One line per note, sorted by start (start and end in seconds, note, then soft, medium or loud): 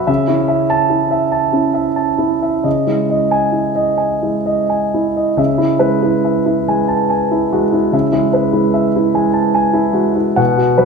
0.00 0.11 F#3 soft
0.00 0.11 F#4 medium
0.00 0.07 E5 medium
0.00 0.11 B5 medium
0.07 2.61 C#3 medium
0.07 0.41 E5 medium
0.28 0.62 C#4 soft
0.28 0.61 E4 soft
0.48 0.82 E5 soft
0.70 1.03 A5 medium
0.90 1.24 E4 soft
1.11 1.45 E5 soft
1.32 1.66 A5 soft
1.52 1.88 C#4 soft
1.52 1.88 E4 soft
1.74 2.10 E5 soft
1.96 2.33 A5 soft
2.18 2.55 E4 soft
2.42 2.65 E5 soft
2.64 5.34 C#3 soft
2.64 3.01 D#5 soft
2.87 3.24 G#3 soft
2.87 3.24 E4 soft
3.10 3.46 D#5 soft
3.31 3.68 G#5 medium
3.52 3.90 E4 soft
3.76 4.13 D#5 soft
3.98 4.36 G#5 soft
4.23 4.61 G#3 soft
4.23 4.60 E4 soft
4.46 4.84 D#5 soft
4.70 5.07 G#5 soft
4.94 5.30 E4 soft
5.16 5.39 D#5 soft
5.37 7.88 C#3 medium
5.37 5.73 E5 soft
5.58 5.94 E4 soft
5.79 6.15 G#3 soft
5.79 6.15 B4 soft
6.02 6.37 E4 soft
6.25 6.59 E5 soft
6.46 6.80 E4 soft
6.68 7.02 G#3 soft
6.68 7.02 G#5 soft
6.88 7.10 A5 soft
7.10 7.43 G#5 soft
7.31 7.64 E4 soft
7.52 7.85 G#3 soft
7.52 7.73 F#4 soft
7.73 8.06 E4 soft
7.92 10.35 C#3 medium
7.92 8.27 E5 medium
8.12 8.46 G#3 soft
8.12 8.46 E4 soft
8.33 8.67 B4 soft
8.53 8.87 G#3 soft
8.53 8.87 E4 soft
8.74 9.07 E5 soft
8.96 9.28 E4 soft
9.14 9.48 G#3 soft
9.14 9.48 G#5 soft
9.33 9.55 A5 soft
9.55 9.89 G#5 medium
9.73 10.08 E4 soft
9.93 10.28 G#3 soft
9.93 10.16 F#4 soft
10.15 10.37 E4 soft
10.36 10.85 B2 medium
10.36 10.71 F#5 medium
10.57 10.85 F#4 soft
10.78 10.85 F#3 soft
10.78 10.85 B4 medium